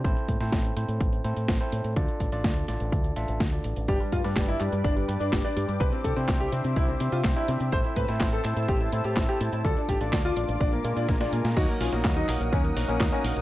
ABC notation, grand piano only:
X:1
M:4/4
L:1/16
Q:1/4=125
K:Ddor
V:1 name="Grand piano"
z16 | z16 | G G, F G, G, E G, G, D G, G, D G, D G, G, | B C A C C G C C E C C F C E C C |
c E B E E A E E G E E G E G E E | A D G D D F D D D _B, B, D B, D B, B, | [K:Ebm] [EG] B, [DF] B, B, [G,E] B, B, [B,D] B, B, [B,D] z [B,D] B, B, |]